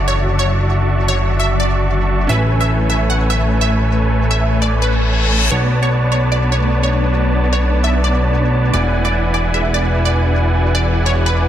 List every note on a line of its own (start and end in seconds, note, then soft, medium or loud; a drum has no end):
0.00 2.27 F#1 medium
0.00 2.26 D3 medium
0.00 2.26 F#3 medium
0.00 2.27 E4 medium
0.00 2.27 F#4 medium
0.00 2.28 A4 medium
0.00 2.27 D5 medium
0.00 2.27 E5 medium
0.00 2.27 A5 medium
0.00 2.27 C#6 medium
0.08 0.35 C#5 medium
0.39 0.57 C#5 medium
1.08 1.36 C#5 medium
1.40 1.57 E5 medium
1.60 2.22 D5 medium
2.27 5.50 A1 medium
2.27 5.49 A3 medium
2.27 5.48 A3 medium
2.27 5.48 C#4 medium
2.27 5.49 E4 medium
2.27 5.49 A4 medium
2.27 5.49 B4 medium
2.27 5.49 C#5 medium
2.27 2.57 E5 loud
2.27 5.49 G#5 medium
2.31 5.50 B4 medium
2.61 2.87 E5 medium
2.90 3.08 E5 medium
3.10 3.28 F#5 medium
3.30 3.58 E5 medium
3.61 3.79 E5 medium
4.31 4.58 E5 medium
4.62 4.80 D5 medium
4.71 reverse cymbal medium
4.82 5.44 B4 medium
5.51 8.72 B1 medium
5.51 8.70 A3 medium
5.51 8.71 B3 medium
5.51 11.48 B3 medium
5.51 8.70 D4 medium
5.51 6.31 F#4 medium
5.51 8.71 B4 medium
5.51 8.71 C#5 medium
5.51 5.79 C#5 loud
5.51 8.71 D5 medium
5.51 8.71 A5 medium
5.71 5.98 D5 medium
5.83 6.63 A4 medium
5.83 6.09 C#5 medium
5.92 6.18 C#5 loud
6.12 6.30 C#5 medium
6.12 6.29 D5 medium
6.23 6.58 C#5 medium
6.32 7.12 F#4 medium
6.32 6.50 D5 medium
6.52 6.80 C#5 medium
6.52 6.78 D5 medium
6.63 7.43 A4 medium
6.72 6.98 C#5 loud
6.83 7.01 C#5 medium
6.92 7.09 D5 medium
7.03 7.38 C#5 medium
7.12 7.92 F#4 medium
7.32 7.59 D5 medium
7.44 8.24 A4 medium
7.53 7.79 C#5 medium
7.53 7.80 C#5 medium
7.73 7.90 D5 medium
7.84 8.19 C#5 medium
7.84 8.02 E5 medium
7.93 10.37 F#4 medium
8.04 8.66 D5 medium
8.13 8.39 D5 medium
8.24 8.79 A4 medium
8.33 8.59 C#5 loud
8.53 8.70 D5 medium
8.64 10.56 C#5 medium
8.73 11.48 E1 medium
8.73 11.48 E3 medium
8.73 11.48 D4 medium
8.73 11.48 E4 medium
8.73 11.48 F#4 medium
8.73 9.54 G#4 medium
8.73 11.48 G#4 medium
8.73 11.48 B4 medium
8.73 9.01 D5 loud
8.73 11.48 D5 medium
8.73 11.48 F#5 medium
8.73 11.48 G#5 medium
8.94 9.33 G#5 medium
9.05 9.85 B4 medium
9.05 9.31 D5 loud
9.14 9.45 E5 medium
9.34 9.52 D5 medium
9.34 9.74 G#5 medium
9.45 9.94 E5 medium
9.54 10.34 G#4 medium
9.54 9.72 E5 medium
9.74 10.02 D5 medium
9.74 10.14 G#5 medium
9.85 10.65 B4 medium
9.94 10.25 E5 loud
10.05 10.23 D5 medium
10.14 10.54 G#5 medium
10.26 10.74 E5 medium
10.35 11.15 G#4 medium
10.55 10.94 G#5 medium
10.66 11.48 B4 medium
10.75 11.02 D5 medium
10.75 11.06 E5 loud
10.95 11.48 G#5 medium
11.06 11.24 C#5 medium
11.06 11.48 E5 medium
11.15 11.48 G#4 medium
11.26 11.48 B4 medium
11.35 11.48 D6 medium